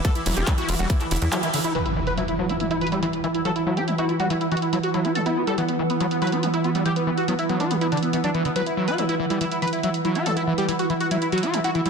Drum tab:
RD |x---x---x---x---x---x---x---x---|--------------------------------|--------------------------------|--------------------------------|
HH |x-x-o-x-x-x-o-x-x-x-oxx-x-x-o-x-|x-x---x-x-x---x-x-x-xxx-x-x-x-x-|x-x---x-x-x-x-x-x-x-xxx-x-x-x-x-|x-x---x-x-x---x-x-x-xxx-x-x-x-x-|
CP |--------x---------x-----x-------|--------------------------------|--------------------------------|--------------------------------|
BD |o-------o-------o---------------|--------------------------------|--------------------------------|--------------------------------|

RD |--------------------------------|--------------------------------|--------------------------------|
HH |x-x---x-x-x-x-x-x-x-xxx-x-x-x-x-|x-x---x-x-x---x-x-x-xxx-x-x-x-x-|x-x---x-x-x-x-x-x-x-xxx-x-x-x-x-|
CP |--------------------------------|--------------------------------|--------------------------------|
BD |--------------------------------|--------------------------------|--------------------------------|